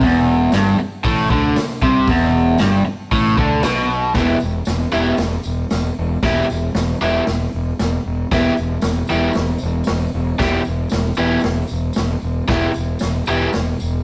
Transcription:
0.01 0.50 E1 loud
0.01 0.53 E2 loud
0.01 kick loud
0.01 open hi-hat medium
0.52 0.77 G1 loud
0.52 0.79 G2 loud
0.52 snare loud
0.52 open hi-hat medium
0.52 tambourine medium
0.79 muted fingered electric bass stroke soft
0.79 muted overdriven electric guitar stroke medium
1.04 1.29 A1 medium
1.04 1.30 A2 loud
1.04 kick loud
1.04 open hi-hat medium
1.30 1.55 D2 loud
1.30 1.56 D3 loud
1.30 kick loud
1.56 snare loud
1.56 open hi-hat medium
1.56 tambourine medium
1.82 2.06 C2 loud
1.82 2.08 C3 medium
1.82 kick loud
2.07 2.56 E1 medium
2.07 2.60 E2 loud
2.07 kick loud
2.07 open hi-hat medium
2.58 2.84 G1 medium
2.58 2.85 G2 loud
2.58 snare loud
2.58 open hi-hat medium
2.58 tambourine loud
2.86 muted overdriven electric guitar stroke medium
2.86 muted fingered electric bass stroke soft
3.12 3.36 A1 medium
3.12 3.37 A2 loud
3.12 kick loud
3.12 open hi-hat medium
3.37 3.62 D2 loud
3.37 3.63 D3 loud
3.37 kick loud
3.63 4.12 B1 loud
3.63 4.14 B2 loud
3.63 snare loud
3.63 open hi-hat medium
3.63 tambourine medium
4.14 4.33 E1 medium
4.14 4.36 E3 medium
4.14 4.36 B3 medium
4.14 4.36 E4 medium
4.14 4.37 G4 medium
4.14 kick loud
4.14 snare loud
4.14 open hi-hat medium
4.14 tambourine soft
4.40 4.59 E1 medium
4.40 tambourine medium
4.65 4.84 E1 medium
4.65 snare loud
4.65 open hi-hat medium
4.65 tambourine medium
4.92 5.10 E1 medium
4.92 5.14 E3 medium
4.92 5.14 B3 medium
4.92 5.14 E4 loud
4.92 5.15 G4 loud
4.92 tambourine medium
5.17 5.35 E1 medium
5.17 snare loud
5.17 open hi-hat medium
5.17 tambourine medium
5.43 5.62 E1 medium
5.43 tambourine medium
5.70 5.88 E1 medium
5.70 snare loud
5.70 open hi-hat soft
5.70 tambourine medium
5.98 6.15 E1 medium
6.23 6.41 E1 medium
6.23 6.44 E3 medium
6.23 6.45 B3 medium
6.23 6.45 E4 medium
6.23 6.45 G4 loud
6.23 kick loud
6.23 snare loud
6.23 open hi-hat medium
6.23 tambourine soft
6.50 6.67 E1 medium
6.50 tambourine medium
6.75 6.92 E1 medium
6.75 snare loud
6.75 open hi-hat medium
6.75 tambourine medium
7.01 7.18 E1 medium
7.01 7.22 E3 loud
7.01 7.22 B3 medium
7.01 7.23 E4 loud
7.01 7.23 G4 loud
7.01 tambourine medium
7.27 7.45 E1 medium
7.27 snare loud
7.27 open hi-hat medium
7.27 tambourine medium
7.54 7.71 E1 medium
7.79 7.97 E1 medium
7.79 snare loud
7.79 open hi-hat soft
7.79 tambourine loud
8.05 8.23 E1 medium
8.31 8.48 E1 medium
8.31 8.53 E3 medium
8.31 8.53 B3 medium
8.31 8.53 E4 loud
8.31 8.54 G4 loud
8.31 kick loud
8.31 snare loud
8.31 open hi-hat medium
8.31 tambourine soft
8.57 8.76 E1 medium
8.57 tambourine medium
8.81 9.00 E1 medium
8.81 snare loud
8.81 open hi-hat medium
8.81 tambourine medium
9.07 9.28 E1 medium
9.07 9.31 E3 medium
9.07 9.31 B3 medium
9.07 9.31 G4 loud
9.07 tambourine medium
9.11 9.31 E4 medium
9.33 9.54 E1 medium
9.33 snare loud
9.33 open hi-hat medium
9.33 tambourine medium
9.58 tambourine medium
9.62 9.80 E1 medium
9.84 snare loud
9.84 open hi-hat medium
9.84 tambourine medium
9.89 10.06 E1 medium
10.14 10.31 E1 medium
10.38 10.58 E1 medium
10.38 10.61 E3 medium
10.38 10.61 B3 medium
10.38 10.61 E4 medium
10.38 10.61 G4 loud
10.38 kick loud
10.38 snare loud
10.38 open hi-hat medium
10.38 tambourine soft
10.65 10.84 E1 medium
10.65 tambourine medium
10.89 11.10 E1 medium
10.89 snare loud
10.89 open hi-hat medium
10.89 tambourine medium
11.15 11.35 E1 medium
11.15 11.39 E3 medium
11.15 11.39 B3 medium
11.15 11.40 G4 loud
11.15 tambourine medium
11.19 11.40 E4 loud
11.40 11.61 E1 medium
11.40 snare loud
11.40 open hi-hat medium
11.40 tambourine medium
11.67 11.88 E1 medium
11.67 tambourine medium
11.93 snare loud
11.93 open hi-hat medium
11.93 tambourine medium
11.97 12.14 E1 medium
12.21 12.40 E1 medium
12.21 tambourine soft
12.47 12.66 E1 medium
12.47 12.70 E3 medium
12.47 12.70 B3 medium
12.47 12.70 E4 loud
12.47 12.71 G4 medium
12.47 kick loud
12.47 snare loud
12.47 open hi-hat medium
12.47 tambourine soft
12.74 12.93 E1 medium
12.74 tambourine medium
12.99 13.19 E1 medium
12.99 snare loud
12.99 open hi-hat medium
12.99 tambourine loud
13.26 13.45 E1 medium
13.26 13.49 E3 loud
13.26 13.49 B3 medium
13.26 13.49 E4 loud
13.26 tambourine medium
13.30 13.50 G4 loud
13.53 13.72 E1 medium
13.53 snare loud
13.53 open hi-hat medium
13.53 tambourine medium
13.80 13.98 E1 medium
13.80 tambourine medium

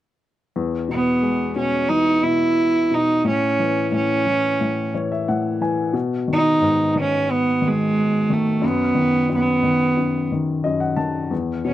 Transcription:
0.56 3.22 E2 medium
0.89 1.55 B2 soft
0.89 1.54 B3 medium
1.22 2.54 G#3 soft
1.56 2.21 B2 soft
1.56 1.90 C#4 medium
1.89 3.21 E3 soft
1.89 2.26 D#4 medium
2.23 2.90 B2 soft
2.23 2.96 E4 medium
2.91 3.24 B2 soft
2.91 3.27 D#4 medium
3.24 3.90 A2 medium
3.24 3.90 C#4 medium
3.60 4.25 E3 soft
3.92 4.59 A2 soft
3.92 4.91 C#4 medium
4.27 4.93 E3 soft
4.61 5.27 A2 soft
4.94 5.60 E3 soft
4.94 5.10 C#5 medium
5.12 5.27 E5 medium
5.28 5.93 A2 soft
5.28 5.59 F#5 medium
5.61 5.93 E3 soft
5.61 5.92 G#5 medium
5.93 8.58 B2 medium
6.28 6.94 D#3 soft
6.33 6.93 D#4 medium
6.61 7.92 G#2 soft
6.95 7.60 D#3 soft
7.00 7.33 C#4 medium
7.31 7.68 B3 medium
7.62 8.29 D#3 soft
7.67 8.34 G#3 medium
8.30 8.62 D#3 soft
8.30 8.68 A3 medium
8.61 9.28 F#2 medium
8.67 9.32 B3 medium
8.95 9.62 D#3 soft
9.29 9.96 F#2 soft
9.35 10.29 B3 medium
9.63 10.30 D#3 soft
9.97 10.63 F#2 soft
10.32 10.96 D#3 soft
10.64 11.30 F#2 soft
10.64 10.80 D#5 medium
10.80 10.96 F#5 soft
10.96 11.30 D#3 soft
10.96 11.28 A5 medium
11.31 11.74 E2 medium
11.65 11.74 B2 soft
11.65 11.74 C#4 medium

